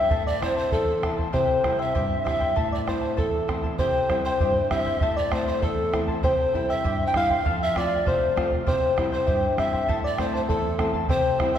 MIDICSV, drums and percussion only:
0, 0, Header, 1, 2, 480
1, 0, Start_track
1, 0, Key_signature, 0, "minor"
1, 0, Tempo, 609756
1, 93, Time_signature, 2, 2, 24, 8
1, 9120, End_track
2, 0, Start_track
2, 0, Title_t, "Bombo"
2, 85, Note_on_c, 9, 43, 73
2, 164, Note_off_c, 9, 43, 0
2, 335, Note_on_c, 9, 37, 54
2, 335, Note_on_c, 9, 43, 53
2, 413, Note_off_c, 9, 37, 0
2, 413, Note_off_c, 9, 43, 0
2, 566, Note_on_c, 9, 43, 66
2, 645, Note_off_c, 9, 43, 0
2, 813, Note_on_c, 9, 37, 51
2, 813, Note_on_c, 9, 43, 50
2, 892, Note_off_c, 9, 37, 0
2, 892, Note_off_c, 9, 43, 0
2, 936, Note_on_c, 9, 43, 54
2, 1015, Note_off_c, 9, 43, 0
2, 1056, Note_on_c, 9, 43, 65
2, 1135, Note_off_c, 9, 43, 0
2, 1294, Note_on_c, 9, 37, 51
2, 1294, Note_on_c, 9, 43, 49
2, 1372, Note_off_c, 9, 37, 0
2, 1372, Note_off_c, 9, 43, 0
2, 1540, Note_on_c, 9, 43, 62
2, 1618, Note_off_c, 9, 43, 0
2, 1785, Note_on_c, 9, 37, 50
2, 1785, Note_on_c, 9, 43, 49
2, 1863, Note_off_c, 9, 37, 0
2, 1863, Note_off_c, 9, 43, 0
2, 1900, Note_on_c, 9, 43, 49
2, 1978, Note_off_c, 9, 43, 0
2, 2023, Note_on_c, 9, 43, 66
2, 2102, Note_off_c, 9, 43, 0
2, 2264, Note_on_c, 9, 37, 48
2, 2264, Note_on_c, 9, 43, 47
2, 2342, Note_off_c, 9, 37, 0
2, 2342, Note_off_c, 9, 43, 0
2, 2504, Note_on_c, 9, 43, 69
2, 2582, Note_off_c, 9, 43, 0
2, 2747, Note_on_c, 9, 37, 51
2, 2747, Note_on_c, 9, 43, 51
2, 2826, Note_off_c, 9, 37, 0
2, 2826, Note_off_c, 9, 43, 0
2, 2863, Note_on_c, 9, 43, 52
2, 2942, Note_off_c, 9, 43, 0
2, 2981, Note_on_c, 9, 43, 68
2, 3060, Note_off_c, 9, 43, 0
2, 3225, Note_on_c, 9, 37, 52
2, 3225, Note_on_c, 9, 43, 48
2, 3303, Note_off_c, 9, 37, 0
2, 3303, Note_off_c, 9, 43, 0
2, 3466, Note_on_c, 9, 43, 73
2, 3544, Note_off_c, 9, 43, 0
2, 3707, Note_on_c, 9, 37, 54
2, 3707, Note_on_c, 9, 43, 53
2, 3785, Note_off_c, 9, 37, 0
2, 3785, Note_off_c, 9, 43, 0
2, 3827, Note_on_c, 9, 43, 52
2, 3906, Note_off_c, 9, 43, 0
2, 3943, Note_on_c, 9, 43, 71
2, 4022, Note_off_c, 9, 43, 0
2, 4185, Note_on_c, 9, 37, 54
2, 4185, Note_on_c, 9, 43, 52
2, 4264, Note_off_c, 9, 37, 0
2, 4264, Note_off_c, 9, 43, 0
2, 4427, Note_on_c, 9, 43, 69
2, 4506, Note_off_c, 9, 43, 0
2, 4672, Note_on_c, 9, 37, 49
2, 4672, Note_on_c, 9, 43, 51
2, 4751, Note_off_c, 9, 37, 0
2, 4751, Note_off_c, 9, 43, 0
2, 4784, Note_on_c, 9, 43, 51
2, 4862, Note_off_c, 9, 43, 0
2, 4909, Note_on_c, 9, 43, 74
2, 4988, Note_off_c, 9, 43, 0
2, 5149, Note_on_c, 9, 43, 54
2, 5227, Note_off_c, 9, 43, 0
2, 5392, Note_on_c, 9, 43, 65
2, 5470, Note_off_c, 9, 43, 0
2, 5621, Note_on_c, 9, 37, 50
2, 5621, Note_on_c, 9, 43, 53
2, 5700, Note_off_c, 9, 37, 0
2, 5700, Note_off_c, 9, 43, 0
2, 5747, Note_on_c, 9, 43, 52
2, 5826, Note_off_c, 9, 43, 0
2, 5873, Note_on_c, 9, 43, 71
2, 5951, Note_off_c, 9, 43, 0
2, 6109, Note_on_c, 9, 37, 52
2, 6109, Note_on_c, 9, 43, 54
2, 6188, Note_off_c, 9, 37, 0
2, 6188, Note_off_c, 9, 43, 0
2, 6350, Note_on_c, 9, 43, 72
2, 6429, Note_off_c, 9, 43, 0
2, 6593, Note_on_c, 9, 37, 56
2, 6593, Note_on_c, 9, 43, 54
2, 6671, Note_off_c, 9, 37, 0
2, 6671, Note_off_c, 9, 43, 0
2, 6710, Note_on_c, 9, 43, 60
2, 6789, Note_off_c, 9, 43, 0
2, 6826, Note_on_c, 9, 43, 78
2, 6905, Note_off_c, 9, 43, 0
2, 7067, Note_on_c, 9, 37, 55
2, 7067, Note_on_c, 9, 43, 55
2, 7146, Note_off_c, 9, 37, 0
2, 7146, Note_off_c, 9, 43, 0
2, 7304, Note_on_c, 9, 43, 72
2, 7383, Note_off_c, 9, 43, 0
2, 7544, Note_on_c, 9, 37, 50
2, 7544, Note_on_c, 9, 43, 52
2, 7623, Note_off_c, 9, 37, 0
2, 7623, Note_off_c, 9, 43, 0
2, 7667, Note_on_c, 9, 43, 49
2, 7746, Note_off_c, 9, 43, 0
2, 7786, Note_on_c, 9, 43, 67
2, 7864, Note_off_c, 9, 43, 0
2, 8017, Note_on_c, 9, 37, 51
2, 8017, Note_on_c, 9, 43, 49
2, 8096, Note_off_c, 9, 37, 0
2, 8096, Note_off_c, 9, 43, 0
2, 8261, Note_on_c, 9, 43, 70
2, 8340, Note_off_c, 9, 43, 0
2, 8494, Note_on_c, 9, 37, 53
2, 8494, Note_on_c, 9, 43, 54
2, 8573, Note_off_c, 9, 37, 0
2, 8573, Note_off_c, 9, 43, 0
2, 8613, Note_on_c, 9, 43, 53
2, 8692, Note_off_c, 9, 43, 0
2, 8729, Note_on_c, 9, 43, 75
2, 8808, Note_off_c, 9, 43, 0
2, 8973, Note_on_c, 9, 37, 54
2, 8973, Note_on_c, 9, 43, 57
2, 9052, Note_off_c, 9, 37, 0
2, 9052, Note_off_c, 9, 43, 0
2, 9120, End_track
0, 0, End_of_file